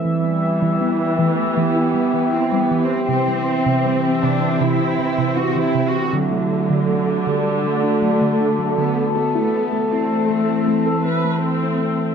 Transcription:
Already playing: synth drone E3 E5
0.04 synth pluck E3, viola section E3, cello section G3, synth drone B3 G4
0.24 synth pluck B3
0.62 synth pluck E3
0.81 synth pluck B3
1.19 synth pluck E3, cello section A3
1.57 synth pluck E3, cello section B3
1.76 synth pluck E4
1.94 synth pluck G3
2.14 synth pluck E3
2.33 cello section C4, synth pluck E4
2.52 synth pluck G3
2.58 cello section B3
2.71 synth pluck E3
2.84 cello section C4
3.08 synth pluck C3, synth drone E3 C4 E5, cello section C4, viola section C4
3.28 synth pluck G3
3.66 synth pluck C3
3.85 synth pluck G3
4.22 synth pluck C3, cello section D4
4.61 synth pluck C3, cello section E4
4.80 synth pluck C4
4.99 synth pluck E3
5.18 synth pluck C3
5.36 synth pluck C4, cello section F#4
5.56 synth pluck E3
5.62 cello section E4
5.75 synth pluck C3
5.87 cello section F#4
6.12 viola section D3, synth pluck D3, cello section F#3, synth drone A3 F#4 A4 D5
6.32 synth pluck A3
6.70 synth pluck D3
6.89 synth pluck A3
7.26 synth pluck D3, cello section G3
7.64 synth pluck D3, cello section A3
7.83 synth pluck D4
8.02 synth pluck F#3
8.21 synth pluck D3
8.40 synth pluck D4
8.59 synth pluck F#3
8.78 synth pluck D3, cello section B3
9.15 synth drone E3 E5, viola section A3, synth pluck A3, cello section B3
9.35 synth pluck E4
9.73 synth pluck A3
9.92 viola section A3, cello section C4, synth pluck E4
10.30 synth pluck A3
10.68 synth pluck A3
10.86 synth pluck A4
11.06 synth pluck C4, viola section B4
11.24 synth pluck A3
11.44 viola section C4, synth pluck A4
11.63 synth pluck C4
11.82 synth pluck A3

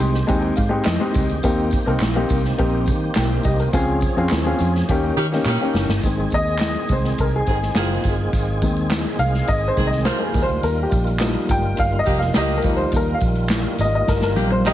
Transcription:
Already playing: tonewheel organ D#3 G#3 C4 G4
0.00 fingered electric bass C2, upright piano C6, closed hi-hat
0.14 snare
0.27 fingered electric bass D#2, upright piano G#3 C4 D#4 G4 G#5, kick, closed hi-hat, tambourine
0.41 upright piano G5
0.56 fingered electric bass G#2, upright piano F5, kick, closed hi-hat, tambourine
0.69 upright piano G#3 C4 D#4 G4
0.85 fingered electric bass F2, upright piano D#5, snare, clap, closed hi-hat, tambourine
1.00 upright piano G#3 C4 D#4 G4
1.14 fingered electric bass C#2, kick, closed hi-hat, tambourine
1.29 fingered electric bass D2, closed hi-hat
1.43 fingered electric bass D#2, tonewheel organ D#3 A#3, upright piano A#3 C4 D#4 G4, kick, closed hi-hat, tambourine
1.71 kick, closed hi-hat, tambourine
1.86 fingered electric bass C2, upright piano A#3 C4 D#4 A#4, closed hi-hat
2.00 fingered electric bass A#1, snare, clap, closed hi-hat, tambourine
2.15 upright piano A#3 C4 D#4 G4
2.29 fingered electric bass C2, kick, closed hi-hat, tambourine
2.45 snare
2.58 fingered electric bass A#1, upright piano A#3 C4 D#4 G4, kick, closed hi-hat
2.86 fingered electric bass D#3, kick, closed hi-hat, tambourine
3.15 fingered electric bass B1, upright piano A#4 G5, snare, clap, closed hi-hat, tambourine
3.43 fingered electric bass C2, upright piano G4 D#5, kick, closed hi-hat, tambourine
3.60 upright piano A#4, closed hi-hat
3.73 fingered electric bass C#2, tonewheel organ F3 C#4 G#4, upright piano C4 C#4 F4 G#4, kick, closed hi-hat, tambourine
4.01 kick, closed hi-hat, tambourine
4.17 fingered electric bass F2, upright piano C4 C#4 F4 G#4, closed hi-hat
4.29 fingered electric bass D#2, snare, clap, closed hi-hat, tambourine
4.45 upright piano C4 C#4 F4 G#4
4.59 fingered electric bass F2, closed hi-hat, tambourine
4.75 snare
4.88 fingered electric bass D#2, tonewheel organ D#3 A#3 G4, upright piano A#3 C#4 D#4 G4, kick, closed hi-hat, tambourine
5.17 fingered electric bass D#3, saxophone section D#3 C#4 G4, closed hi-hat
5.32 upright piano A#3 C#4 D#4 G4, snare
5.45 fingered electric bass A#2, saxophone section D#3 C#4 G4, snare, clap, tambourine
5.61 upright piano A#3 C#4 D#4 G4
5.73 fingered electric bass F#1, snare, tambourine
5.88 fingered electric bass G1, snare
6.03 fingered electric bass G#1, tonewheel organ D#3 G#3 C4 G#4, upright piano D#3 G#3 C4, kick, closed hi-hat, tambourine
6.30 fingered electric bass D#2, upright piano D#5, kick, closed hi-hat, tambourine
6.47 closed hi-hat
6.58 snare, clap, closed hi-hat, tambourine
6.89 fingered electric bass C2, upright piano D#3 G#3 C4 C5, kick, closed hi-hat, tambourine
7.04 snare
7.18 fingered electric bass C2, upright piano A#4, kick, closed hi-hat, tambourine
7.36 upright piano G#4
7.46 fingered electric bass G#1, saxophone section D#3 C4 G#4, kick, closed hi-hat, tambourine
7.51 upright piano G#4
7.62 snare
7.75 fingered electric bass F#1, saxophone section D#3 C4 G#4, upright piano F4, snare, clap, closed hi-hat, tambourine
8.04 fingered electric bass G1, kick, closed hi-hat, tambourine
8.33 fingered electric bass G#1, kick, closed hi-hat, tambourine
8.62 fingered electric bass D#2, upright piano D#3 G#3 C4, kick, closed hi-hat, tambourine
8.76 closed hi-hat
8.91 snare, clap, closed hi-hat, tambourine
9.19 fingered electric bass C2, upright piano F5, closed hi-hat, tambourine
9.34 snare
9.47 fingered electric bass G#1, upright piano D#5, kick, closed hi-hat, tambourine
9.68 upright piano C5
9.77 fingered electric bass C2, saxophone section D#3 C4 G#4, upright piano D#3 G#3 C4, kick, closed hi-hat, tambourine
9.87 upright piano D#5
9.92 snare
10.05 saxophone section G3 F4 A#4, upright piano C5, snare, clap, closed hi-hat, tambourine
10.20 upright piano G#4 A#4
10.33 fingered electric bass D#2, tonewheel organ D#3 G3 A#3 F4, kick, open hi-hat, tambourine
10.42 upright piano C5
10.49 fingered electric bass D2, closed hi-hat
10.63 fingered electric bass D#2, upright piano A#4, closed hi-hat, tambourine
10.83 upright piano G4
10.91 fingered electric bass A#1, kick, closed hi-hat, tambourine
11.07 closed hi-hat
11.19 upright piano F3 G3 D#4, snare, clap, closed hi-hat, tambourine
11.49 fingered electric bass G1, upright piano G5, kick, closed hi-hat, tambourine
11.77 fingered electric bass G1, upright piano F5, kick, closed hi-hat, tambourine
11.99 upright piano D#5
12.05 fingered electric bass F1, saxophone section D#3 A#3 G4, kick, closed hi-hat, tambourine
12.19 upright piano F5, snare
12.34 fingered electric bass C#2, saxophone section D#3 A#3 G4, upright piano D#5, snare, clap, closed hi-hat, tambourine
12.57 upright piano A#4
12.62 fingered electric bass D2, upright piano F3 G3 D#4, kick, closed hi-hat, tambourine
12.76 upright piano C5, closed hi-hat
12.92 fingered electric bass D#2, kick, closed hi-hat, tambourine
12.96 upright piano A#4
13.14 upright piano F5
13.20 fingered electric bass A#1, kick, closed hi-hat, tambourine
13.35 closed hi-hat
13.49 snare, clap, closed hi-hat, tambourine
13.78 fingered electric bass G#1, upright piano D#5, closed hi-hat, tambourine
13.95 upright piano D#5
14.08 fingered electric bass G1, upright piano A#4, kick, snare, tambourine
14.21 upright piano A#4, snare
14.36 fingered electric bass A#1, saxophone section D#3 A#3 G4, high tom, tambourine
14.50 upright piano C5, high tom
14.65 saxophone section D#3 A#3 G4, upright piano D#5, clap, mid tom, tambourine

